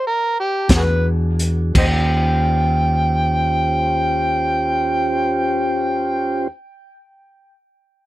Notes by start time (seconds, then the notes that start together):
0.07 A#4
0.40 G4
0.68 E2 D4 F#4 G#4, kick, snare, closed hi-hat
0.76 F#4 G#4 B4
1.39 closed hi-hat
1.74 D#2 C#4 F4 G4 C5, kick, crash
1.78 C5 D#5 G5